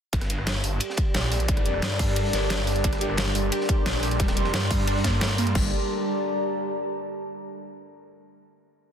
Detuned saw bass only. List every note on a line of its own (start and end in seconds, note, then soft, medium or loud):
0.13 0.62 G1 loud
0.64 0.79 G1 loud
1.15 1.64 A#1 loud
1.65 1.81 F1 medium
1.82 2.32 G2 loud
2.33 2.83 G1 loud
2.84 3.34 G1 medium
3.35 3.51 G1 loud
3.86 4.35 A#1 loud
4.37 4.52 F1 loud
4.54 5.54 G2 loud
5.55 5.71 G1 loud